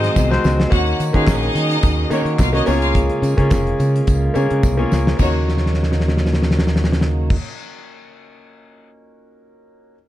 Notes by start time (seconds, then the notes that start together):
Already playing: D#3 G#3 C4 D#4 F#4 C5 D#5
0.04 snare, closed hi-hat
0.15 C2, kick, snare, tambourine, high conga
0.29 G#3 C4 D#4 F#4 C5, snare
0.44 C#2, snare, tambourine, high conga
0.60 snare
0.70 D#2 D#3 A#3 C#4 D#4 F#4 C#5 F#5, kick, closed hi-hat, tambourine, muted conga
0.86 closed hi-hat
1.00 D#3, closed hi-hat, tambourine
1.13 D#3 A#3 C#4 D#4 F4 F#4 G#4 F5, kick, closed hi-hat
1.26 A#1 D#4 D#5, kick, snare, clap, tambourine, high conga
1.43 closed hi-hat
1.54 D#3, closed hi-hat, tambourine, muted conga, low conga
1.71 closed hi-hat
1.83 D#2, kick, closed hi-hat, tambourine
2.10 D#3 A#3 C#4 D#4 F#4 C#5, closed hi-hat, tambourine, muted conga
2.25 D#3, closed hi-hat
2.38 C2 F4 F5, kick, snare, clap, tambourine, high conga
2.53 A#3 C#4 D#4 F#4 C#5 D#5, closed hi-hat, high conga
2.66 C#2 C#3 G#3 A#3 C#4 F4 G#4 C#5, open hi-hat, tambourine, high conga
2.82 F4 F5, closed hi-hat
2.95 kick, closed hi-hat, tambourine, muted conga
3.10 closed hi-hat
3.22 C#3, closed hi-hat, tambourine
3.37 C#3 A#3 C#4 F4 G#4 C#5, kick, closed hi-hat
3.51 F1, kick, snare, clap, tambourine, high conga
3.67 closed hi-hat
3.79 C#3, closed hi-hat, tambourine, muted conga
3.96 closed hi-hat
4.07 C#2, kick, closed hi-hat, tambourine
4.34 C#3 A#3 C#4 F4 G#4 C#5, closed hi-hat, tambourine, muted conga, low conga
4.50 C#3, closed hi-hat
4.63 C2, kick, snare, tambourine, high conga
4.77 A#3 C#4 F4 G#4 C#5, high conga
4.92 C#2, snare, tambourine, high conga
5.07 snare
5.17 D#2 C#3 F#3 A#3 C#4 D#4 F#4 C#5, kick, crash, tambourine, muted conga
5.21 F#4 C#5
5.48 snare
5.58 snare
5.66 snare
5.74 snare
5.83 snare
5.92 snare
6.00 snare
6.08 snare
6.17 snare
6.26 snare
6.33 snare
6.43 snare
6.51 snare
6.59 snare
6.67 snare
6.76 snare
6.84 snare
6.92 snare
7.01 snare
7.30 kick, crash